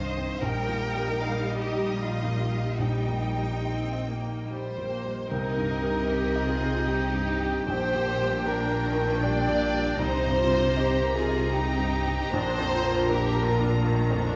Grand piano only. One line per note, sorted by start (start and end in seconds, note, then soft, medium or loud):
0.00 0.38 C2 soft
0.00 0.45 G2 soft
0.00 0.17 C4 soft
0.00 0.45 D#4 soft
0.00 0.45 D#5 soft
0.17 0.43 C4 soft
0.42 2.75 A#1 soft
0.69 1.10 A#2 soft
0.94 1.36 G3 soft
1.21 1.62 D#4 soft
1.46 1.87 D#5 soft
1.72 2.14 D#4 soft
1.98 2.41 G3 soft
2.24 2.68 A#2 soft
2.52 2.97 G3 soft
2.80 5.27 A#1 soft
3.08 3.53 A#2 soft
3.36 3.81 G3 soft
3.65 4.10 D#4 soft
3.93 4.39 D#5 soft
4.22 4.67 D#4 soft
4.51 4.94 G3 soft
4.78 5.21 A#2 soft
5.05 5.31 G3 soft
5.31 7.64 C2 soft
5.57 5.99 G2 soft
5.84 6.25 G3 soft
6.10 6.51 D#4 soft
6.36 6.77 D#5 soft
6.61 7.03 D#4 soft
6.87 7.30 G3 soft
7.14 7.57 G2 soft
7.41 7.68 G3 soft
7.68 9.96 A#1 medium
7.94 8.36 A#2 soft
8.20 8.61 G3 soft
8.47 8.88 D4 soft
8.71 9.13 A#4 soft
8.98 9.39 D4 soft
9.24 9.65 G3 soft
9.49 9.90 A#2 soft
9.74 10.00 G3 soft
9.99 12.28 C2 medium
10.25 10.66 G2 soft
10.51 10.92 G3 soft
10.77 11.17 D#4 soft
11.03 11.43 A#4 soft
11.28 11.69 D#4 soft
11.53 11.95 G3 soft
11.79 12.22 G2 soft
12.07 12.33 G3 soft
12.33 14.36 A#1 medium
12.59 12.99 F2 soft
12.84 13.24 A#3 soft
13.10 13.50 D4 medium
13.35 13.75 A#4 medium
13.60 14.00 D4 medium
13.85 14.25 A#3 medium
14.11 14.36 F2 soft